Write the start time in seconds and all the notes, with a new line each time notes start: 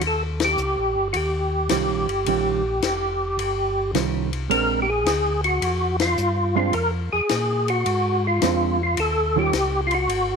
0.01 D#2, ride
0.07 A4
0.40 snare, ride
0.45 G4
0.57 C#2, hi-hat pedal
0.77 A#1
0.96 G1
1.13 D#2 F#4 G4, ride
1.69 C2 D#3 G3 C#4 F4, snare, hi-hat pedal, ride
1.89 A#1
2.07 G1, ride
2.26 A#1 D#3 G3 C#4 F4, ride
2.82 F1, snare, hi-hat pedal, ride
3.38 G1, ride
3.93 C2 D#3 G3 C#4 F4, snare, hi-hat pedal, ride
4.33 ride
4.49 A#1 G#3 C4 D4 A#4, ride
4.82 G4
4.89 G#4
5.05 D2, snare, hi-hat pedal, ride
5.44 F#4, ride
5.62 F2, ride
6.00 F4, snare, ride
6.17 G2, hi-hat pedal
6.56 G#3 C4 D4 F4
6.73 F2 A#4, ride
7.12 F2 G#4
7.29 A#2, snare, hi-hat pedal, ride
7.68 F#4, ride
7.86 G#2, ride
8.27 F4
8.42 F2 G#3 C4 D4, snare, hi-hat pedal, ride
8.83 F4
8.97 D#2 A4, ride
9.36 D#3 G3 C#4 F4 G4
9.53 C#2, snare, hi-hat pedal, ride
9.87 F4, ride
9.95 F#4
10.09 G#1, ride